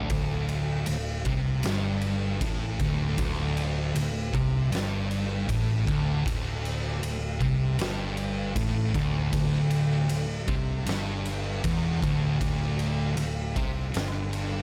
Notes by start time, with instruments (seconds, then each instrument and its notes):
0.10 picked electric bass D1, distorted electric guitar D2, kick, ride
0.49 ride
0.86 picked electric bass D1, distorted electric guitar D2, ride
1.25 picked electric bass C2, distorted electric guitar C3, kick, ride
1.63 picked electric bass G1, distorted electric guitar G2, snare, ride
2.02 ride
2.41 picked electric bass A1, distorted electric guitar A2, kick, ride
2.80 picked electric bass D1, distorted electric guitar D2, kick, ride
3.18 picked electric bass D1, distorted electric guitar D2, kick, ride
3.57 ride
3.95 picked electric bass D1, distorted electric guitar D2, ride
4.33 picked electric bass C2, distorted electric guitar C3, kick, ride
4.71 picked electric bass G1, distorted electric guitar G2, ride
4.75 snare
5.11 ride
5.48 picked electric bass A1, distorted electric guitar A2, kick, ride
5.86 picked electric bass D1, distorted electric guitar D2, kick, ride
6.25 picked electric bass D1, distorted electric guitar D2, kick, ride
6.65 ride
7.02 picked electric bass D1, distorted electric guitar D2, ride
7.40 picked electric bass C2, distorted electric guitar C3, kick, ride
7.79 picked electric bass G1, distorted electric guitar G2, snare, ride
8.17 ride
8.55 picked electric bass A1, distorted electric guitar A2, kick, ride
8.94 picked electric bass D1, distorted electric guitar D2, kick, snare, ride
9.32 picked electric bass D1, distorted electric guitar D2, kick, ride
9.71 ride
10.09 picked electric bass D1, distorted electric guitar D2, ride
10.47 picked electric bass C2, distorted electric guitar C3, kick, ride
10.86 picked electric bass G1, distorted electric guitar G2, snare, ride
11.26 ride
11.64 picked electric bass E1, distorted electric guitar E2, kick, ride
12.02 picked electric bass D1, distorted electric guitar D2, kick, ride
12.39 picked electric bass D1, distorted electric guitar D2, kick, ride
12.79 ride
13.16 picked electric bass D1, distorted electric guitar D2, ride
13.55 picked electric bass C2, distorted electric guitar C3, kick, ride
13.94 picked electric bass G1, distorted electric guitar G2, snare, ride
14.33 ride